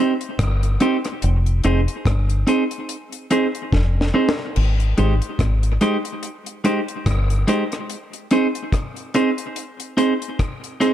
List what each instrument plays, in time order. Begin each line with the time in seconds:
Already playing: clean electric guitar C4
0.00 clean electric guitar D#4 G4 C5
0.21 closed hi-hat
0.39 fingered electric bass G1, kick, cross-stick, closed hi-hat
0.63 closed hi-hat
0.80 clean electric guitar C4 D#4 G4 C5, closed hi-hat
1.04 muted clean electric guitar stroke, cross-stick, closed hi-hat
1.22 fingered electric bass F1, closed hi-hat
1.46 closed hi-hat
1.64 fingered electric bass F1, clean electric guitar C4 D#4 G#4 C5, closed hi-hat
1.88 closed hi-hat
2.06 fingered electric bass G1, kick, cross-stick, closed hi-hat
2.30 closed hi-hat
2.47 clean electric guitar C4 D#4 G#4 C5, closed hi-hat
2.71 closed hi-hat
2.89 closed hi-hat
3.12 closed hi-hat
3.31 clean electric guitar C4 D#4 G#4 C5, closed hi-hat
3.55 closed hi-hat
3.72 fingered electric bass F1, kick, snare
4.01 snare
4.14 clean electric guitar C4 D#4 G#4 C5
4.29 snare
4.38 muted clean electric guitar stroke
4.56 fingered electric bass G#1, crash
4.80 closed hi-hat
4.98 fingered electric bass G#1, clean electric guitar G#3 D#4 G4 C5, closed hi-hat
5.22 closed hi-hat
5.39 fingered electric bass G#1, kick, cross-stick, closed hi-hat
5.63 closed hi-hat
5.81 clean electric guitar G#3 D#4 G4 C5, closed hi-hat
6.05 closed hi-hat
6.23 closed hi-hat
6.46 closed hi-hat
6.64 clean electric guitar G#3 D#4 G4 C5, closed hi-hat
6.88 closed hi-hat
7.06 fingered electric bass G1, kick, cross-stick, closed hi-hat
7.30 closed hi-hat
7.47 clean electric guitar G#3 D#4 G4 C5, closed hi-hat
7.72 cross-stick, closed hi-hat
7.90 closed hi-hat
8.13 closed hi-hat
8.31 clean electric guitar C4 D#4 G#4 C5, closed hi-hat
8.55 closed hi-hat
8.72 kick, cross-stick, closed hi-hat
8.96 closed hi-hat
9.14 clean electric guitar C4 D#4 G#4 C5, closed hi-hat
9.38 closed hi-hat
9.56 closed hi-hat
9.80 closed hi-hat
9.97 clean electric guitar C4 D#4 G#4 C5, closed hi-hat
10.22 closed hi-hat
10.39 kick, cross-stick, closed hi-hat
10.64 closed hi-hat
10.80 clean electric guitar C4 D#4 G#4 C5, closed hi-hat